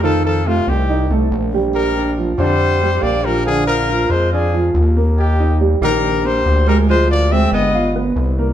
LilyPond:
<<
  \new Staff \with { instrumentName = "Trumpet" } { \time 4/4 \key bes \mixolydian \tempo 4 = 140 a'8 a'8 f'8 g'4 r4. | bes'4 r8 c''4. d''8 bes'8 | aes'8 bes'4 c''8 aes'4 r4 | g'4 r8 bes'4 c''4 bes'8 |
c''8 d''8 e''8 ees''4 r4. | }
  \new Staff \with { instrumentName = "Upright piano" } { \time 4/4 \key bes \mixolydian <ees ees'>4 <a a'>4 <ees' ees''>8 <a a'>4 <g g'>8~ | <g g'>8 <d' d''>8 <f f'>8 <d d'>4 <g g'>4 <f f'>8 | <d d'>4 <f f'>4 <d' d''>8 <f f'>4 <bes bes'>8~ | <bes bes'>8 <ees' ees''>8 <g g'>8 <ees ees'>4 <bes bes'>4 <aes aes'>8 |
<f f'>4 <aes aes'>4 <f' f''>8 <b b'>4 <bes bes'>8 | }
  \new Staff \with { instrumentName = "Tenor saxophone" } { \clef bass \time 4/4 \key bes \mixolydian f8 f8 c8 ees4 r4. | g4 r8 g4. bes8 g8 | f8 f4 aes8 f4 r4 | ees4 r8 g4 g4 g8 |
aes8 bes8 c'8 b4 r4. | }
  \new Staff \with { instrumentName = "Analog synth bass" } { \clef bass \time 4/4 \key bes \mixolydian f,4. c,4 c,8 bes,,4~ | bes,,4. f,4. bes,,4~ | bes,,4. f,4. ees,4~ | ees,4. bes,,4. d,4~ |
d,4. g,,4. c,4 | }
>>